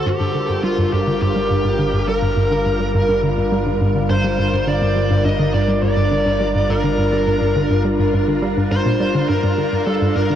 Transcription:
0.06 analog synth bass G1, synth arpeggio sound G2, ambient pad G3 D4 F4 A#4, synth texture F4 F5, lead electric guitar G4
0.20 synth arpeggio sound G2
0.35 synth arpeggio sound D3
0.49 synth arpeggio sound G2
0.64 synth arpeggio sound G3, lead electric guitar F4
0.78 synth arpeggio sound G2
0.93 synth arpeggio sound G2, lead electric guitar G4
1.07 synth arpeggio sound D3
1.22 synth arpeggio sound G2, lead electric guitar G4
1.36 synth arpeggio sound G3
1.50 synth arpeggio sound G2
1.65 synth arpeggio sound G2
1.79 synth arpeggio sound D3
1.93 synth arpeggio sound G2
2.08 synth arpeggio sound G3, lead electric guitar A#4
2.22 synth arpeggio sound G2
2.37 synth arpeggio sound G2
2.51 synth arpeggio sound D3
2.66 synth arpeggio sound G2
2.80 synth arpeggio sound G3
2.94 synth arpeggio sound G2
3.09 synth arpeggio sound G2
3.23 synth arpeggio sound D3
3.38 synth arpeggio sound G2
3.52 synth arpeggio sound G3
3.67 synth arpeggio sound G2
3.81 synth arpeggio sound G2
3.95 synth arpeggio sound D3
4.10 synth arpeggio sound G2, lead electric guitar C5
4.24 synth arpeggio sound G3
4.39 synth arpeggio sound G2
4.53 synth arpeggio sound G2
4.67 synth arpeggio sound D3, lead electric guitar D5, synth texture A#5
4.82 synth arpeggio sound G2
4.96 synth arpeggio sound G3
5.10 synth arpeggio sound G2
5.25 synth arpeggio sound G2, lead electric guitar D#5
5.39 synth arpeggio sound D3
5.54 synth arpeggio sound G2, lead electric guitar D5
5.68 synth arpeggio sound G3
5.83 synth arpeggio sound G2, lead electric guitar D5
5.97 synth arpeggio sound G2
6.11 synth arpeggio sound D3
6.26 synth arpeggio sound G2
6.40 synth arpeggio sound G3
6.55 synth arpeggio sound G2
6.69 synth arpeggio sound G2, lead electric guitar A#4
6.84 synth arpeggio sound D3
6.98 synth arpeggio sound G2
7.13 synth arpeggio sound G3
7.27 synth arpeggio sound G2
7.41 synth arpeggio sound G2
7.56 synth arpeggio sound D3
7.70 synth arpeggio sound G2
7.85 synth arpeggio sound G3
7.99 synth arpeggio sound G2
8.13 synth arpeggio sound G2
8.28 synth arpeggio sound D3
8.42 synth arpeggio sound G3
8.57 synth arpeggio sound G2
8.71 synth arpeggio sound G2, lead electric guitar C5
8.86 synth arpeggio sound A#2
9.00 synth arpeggio sound G3
9.15 synth arpeggio sound D3
9.29 analog synth bass G1, synth arpeggio sound G2, lead electric guitar A#4, ambient pad D5, synth texture F5
9.43 synth arpeggio sound G2
9.58 synth arpeggio sound D3
9.73 synth arpeggio sound G2
9.86 synth arpeggio sound G3, lead electric guitar A4
10.01 synth arpeggio sound G2
10.16 synth arpeggio sound G2, lead electric guitar A#4
10.30 synth arpeggio sound D3

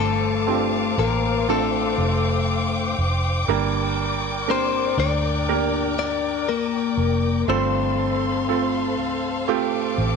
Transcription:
Already playing: fingered electric bass G1, grand piano G2 C4 D4 F4 A4, string section C5 F5 A5 D6
0.00 clean electric guitar A3 A4
0.47 grand piano C4 D4 F4 G4
0.98 fingered electric bass A1, clean electric guitar A#3 A#4
1.48 clean electric guitar A3 A4, grand piano C4 D4 F4 A4, string section G5
1.98 fingered electric bass F1
2.98 fingered electric bass F1
3.48 fingered electric bass G1, grand piano G2 A#3 D4 G4 A#4, string section A#4 D5
4.47 grand piano A#3 D4 G4 A#4, clean electric guitar C4 C5
4.97 fingered electric bass D2, clean electric guitar D4 D5
5.48 grand piano A#3 D4 G4 A#4
5.99 clean electric guitar D4 D5
6.49 clean electric guitar A#3 A#4
6.97 fingered electric bass F1
7.48 fingered electric bass G1, grand piano G2 A3 C4 F4 A4, clean electric guitar C4 C5, string section A4 C5 F5 C6
8.48 grand piano A3 C4 F4 A4
8.98 fingered electric bass C2
9.48 grand piano A3 C4 F4 G4, string section D6
9.98 fingered electric bass A1

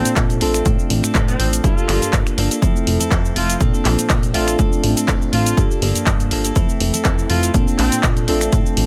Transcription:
Already playing: clean electric guitar F3 C4 D4 A4, tine electric piano A#3 C4 D4 F4 A4, horn section C4
0.05 analog synth bass A#2, closed hi-hat, cabasa
0.16 analog synth bass A#2, kick, clap, closed hi-hat, cabasa
0.30 closed hi-hat, cabasa
0.40 analog synth bass A1, clean electric guitar F3 C4 D4 A4, tine electric piano A3 C4 D4 F4 A4, open hi-hat
0.54 clean electric guitar C4 D4 A4, finger snap, closed hi-hat, cabasa
0.65 analog synth bass A2, clean electric guitar F3 C4 D4 A4, kick, closed hi-hat, cabasa
0.79 cabasa
0.90 analog synth bass A1, open hi-hat
1.03 analog synth bass A2, clean electric guitar C4 D4 A4, finger snap, closed hi-hat, cabasa
1.14 analog synth bass A2, clean electric guitar F3 C4 D4 A4, kick, clap, closed hi-hat, cabasa
1.28 horn section C4, closed hi-hat, cabasa
1.39 analog synth bass A1, clean electric guitar F3 C4 D4 A4, open hi-hat
1.53 closed hi-hat, cabasa
1.63 analog synth bass G2, tine electric piano A#3 D4 F4 G4 A4, clean electric guitar D4 A4, horn section F4, kick, closed hi-hat, cabasa
1.77 clean electric guitar A#3 D4 A4, cabasa
1.88 analog synth bass G1, clean electric guitar F3 A#3 D4 A4, finger snap, clap, open hi-hat
2.02 analog synth bass G2, clean electric guitar A#3 D4 A4, closed hi-hat, cabasa
2.13 analog synth bass G2, kick, clap, closed hi-hat, cabasa
2.27 finger snap, closed hi-hat, cabasa
2.38 analog synth bass G1, clean electric guitar F3 A#3 D4 A4, open hi-hat
2.51 clean electric guitar A#3 D4 A4, closed hi-hat, cabasa
2.62 analog synth bass F2, clean electric guitar F3 C4 E4 A4, tine electric piano F3 A3 C4 E4 A4, kick, closed hi-hat, cabasa
2.76 cabasa
2.87 analog synth bass F1, open hi-hat
3.00 analog synth bass F2, clean electric guitar C4 E4 A4, closed hi-hat, cabasa
3.11 analog synth bass F2, clean electric guitar F3 C4 A4, kick, clap, closed hi-hat, cabasa
3.25 cabasa
3.36 analog synth bass F1, clean electric guitar F3 C4 E4 A4, horn section F4, open hi-hat
3.50 closed hi-hat, cabasa
3.60 analog synth bass A#2, clean electric guitar F3 C4 D4 A4, tine electric piano A#3 C4 D4 F4 A4, kick, closed hi-hat, cabasa
3.74 clean electric guitar C4 D4 A4, cabasa
3.85 analog synth bass A#1, clean electric guitar F3 C4 D4 A4, clap, open hi-hat
3.99 closed hi-hat, cabasa
4.10 analog synth bass A#2, kick, clap, closed hi-hat, cabasa
4.23 closed hi-hat, cabasa
4.34 analog synth bass A1, clean electric guitar F3 C4 D4 A4, tine electric piano A3 C4 D4 F4 A4, horn section F4, open hi-hat
4.47 clean electric guitar C4 D4 A4, finger snap, closed hi-hat, cabasa
4.59 analog synth bass A2, clean electric guitar F3 C4 D4 A4, kick, closed hi-hat, cabasa
4.73 cabasa
4.83 analog synth bass A1, open hi-hat
4.97 analog synth bass A2, clean electric guitar C4 D4 A4, closed hi-hat, cabasa
5.08 analog synth bass A2, clean electric guitar D4 A4, kick, clap, closed hi-hat, cabasa
5.22 cabasa
5.32 analog synth bass A1, clean electric guitar F3 C4 D4 A4, horn section F4, open hi-hat
5.46 closed hi-hat, cabasa
5.56 analog synth bass G2, clean electric guitar F3 A#3 D4 A4, tine electric piano A#3 D4 F4 G4 A4, kick, closed hi-hat, cabasa
5.70 clean electric guitar A#3 D4 A4, cabasa
5.82 analog synth bass G1, clean electric guitar F3 A#3 D4 A4, open hi-hat
5.95 analog synth bass G2, closed hi-hat, cabasa
6.06 analog synth bass G2, kick, clap, closed hi-hat, cabasa
6.20 closed hi-hat, cabasa
6.31 analog synth bass G1, clean electric guitar F3 A#3 D4 A4, open hi-hat
6.44 clean electric guitar A#3 D4 A4, closed hi-hat, cabasa
6.55 analog synth bass F2, clean electric guitar E3 C4 E4 A4, tine electric piano A3 C4 E4 A4, kick, closed hi-hat, cabasa
6.69 cabasa
6.80 analog synth bass F1, open hi-hat
6.93 analog synth bass F2, clean electric guitar C4 E4 A4, closed hi-hat, cabasa
7.05 analog synth bass F2, clean electric guitar E3 E4 A4, kick, clap, closed hi-hat, cabasa
7.19 cabasa
7.29 analog synth bass F1, clean electric guitar E3 C4 E4 A4, horn section F4, open hi-hat
7.42 clean electric guitar C4 E4 A4, closed hi-hat, cabasa
7.54 analog synth bass A#2, clean electric guitar F3 C4 D4 A4, tine electric piano A#3 C4 D4 F4 A4, kick, closed hi-hat, cabasa
7.67 clean electric guitar C4 D4 A4, cabasa
7.78 analog synth bass A#1, clean electric guitar F3 C4 D4 A4, horn section C4, clap, open hi-hat
7.92 analog synth bass A#2, clean electric guitar C4 D4 A4, closed hi-hat, cabasa
8.03 analog synth bass A#2, kick, clap, closed hi-hat, cabasa
8.17 closed hi-hat, cabasa
8.27 analog synth bass A1, clean electric guitar F3 C4 D4 A4, tine electric piano A3 C4 D4 F4 A4, open hi-hat
8.41 clean electric guitar C4 D4 A4, finger snap, closed hi-hat, cabasa
8.52 analog synth bass A2, clean electric guitar F3 C4 D4 A4, kick, closed hi-hat, cabasa
8.66 cabasa
8.77 analog synth bass A1, open hi-hat

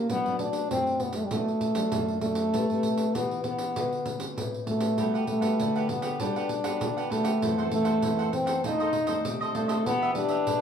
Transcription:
0.10 nylon-string guitar B2 F#3 A3 D4, french horn B3, pandeiro
0.26 nylon-string guitar F#3 A3 D4, pandeiro
0.39 french horn D4, pandeiro
0.53 pandeiro
0.71 nylon-string guitar F#2 F#3 A3 D4, french horn C4, pandeiro
0.87 pandeiro
1.00 french horn B3, pandeiro
1.13 french horn A3, pandeiro
1.24 french horn G3
1.31 nylon-string guitar B2 F#3 A3 D4, french horn A3, pandeiro
1.48 pandeiro
1.61 pandeiro
1.75 nylon-string guitar F#3 A3 D4, pandeiro
1.92 nylon-string guitar F#2, pandeiro
2.08 pandeiro
2.21 nylon-string guitar F#3 A3 D4, french horn A3, pandeiro
2.35 pandeiro
2.53 nylon-string guitar A3 C4 G4 B4, pandeiro
2.69 nylon-string guitar C4 G4 B4, pandeiro
2.83 pandeiro
2.98 pandeiro
3.14 nylon-string guitar E3 G4 B4, french horn B3, pandeiro
3.31 pandeiro
3.44 french horn B3, pandeiro
3.59 pandeiro
3.76 nylon-string guitar D3 F#4 B4, pandeiro
3.92 pandeiro
4.06 pandeiro
4.18 nylon-string guitar C4 F#4 B4, pandeiro
4.36 nylon-string guitar A2, pandeiro
4.54 pandeiro
4.66 french horn A3, nylon-string guitar C4 F#4 B4, pandeiro
4.80 pandeiro
4.97 nylon-string guitar G3 B3 F#4 A4, cavaquinho D4 G4 B4 F#5, pandeiro
5.14 cavaquinho G4 B4 F#5, pandeiro
5.27 french horn A3, pandeiro
5.41 nylon-string guitar B3 F#4 A4, cavaquinho G4 B4 F#5, pandeiro
5.59 nylon-string guitar D3, cavaquinho D4 G4 B4 F#5, pandeiro
5.76 cavaquinho G4 B4 F#5, pandeiro
5.89 nylon-string guitar B3 F#4 A4, french horn B3, muted cavaquinho stroke, pandeiro
6.02 cavaquinho G4 B4 F#5, pandeiro
6.20 nylon-string guitar G3 B3 F#4 A4, cavaquinho D4 G4 B4 F#5, french horn D4, pandeiro
6.36 cavaquinho G4 B4 F#5, pandeiro
6.49 muted cavaquinho stroke, pandeiro
6.64 nylon-string guitar B3 F#4 A4, cavaquinho G4 B4 F#5, pandeiro
6.81 nylon-string guitar D3, pandeiro
6.97 cavaquinho G4 B4 F#5, pandeiro
7.10 french horn A3, nylon-string guitar B3 F#4 A4, cavaquinho D4 G4 B4 F#5, pandeiro
7.24 cavaquinho G4 B4 F#5, pandeiro
7.42 nylon-string guitar F#2 E3 A3 C4, cavaquinho E4 A4 C5 F#5, pandeiro
7.58 nylon-string guitar E3 A3 C4, cavaquinho A4 C5 F#5, pandeiro
7.71 french horn A3, pandeiro
7.84 cavaquinho A4 C5 F#5, pandeiro
8.02 nylon-string guitar F#2 E3 A3 C4, cavaquinho E4 A4 C5 F#5, pandeiro
8.19 cavaquinho A4 C5 F#5, pandeiro
8.32 french horn C4, muted cavaquinho stroke, pandeiro
8.46 cavaquinho A4 C5 F#5, pandeiro
8.64 nylon-string guitar F2 D#3 A3 D4, french horn D#4, cavaquinho F4 A4 C5 D#5, pandeiro
8.80 cavaquinho A4 C5 D#5, pandeiro
8.93 muted cavaquinho stroke, pandeiro
9.07 nylon-string guitar D#3 A3 D4, cavaquinho A4 C5 D#5, pandeiro
9.25 nylon-string guitar C3, pandeiro
9.41 cavaquinho A4 C5 D#5, pandeiro
9.54 nylon-string guitar D#3 A3 D4, french horn A3, cavaquinho F4 A4 C5 D#5, pandeiro
9.68 cavaquinho A4 C5 D#5, pandeiro
9.86 nylon-string guitar E3 B3 D4 G4, french horn B3, cavaquinho D4 G4 B4 E5, pandeiro
10.02 cavaquinho G4 B4 E5, pandeiro
10.15 nylon-string guitar B3 D4 G4, french horn D4, pandeiro
10.29 cavaquinho G4 B4 E5, pandeiro
10.47 nylon-string guitar B2, cavaquinho D4 G4 B4 E5, pandeiro

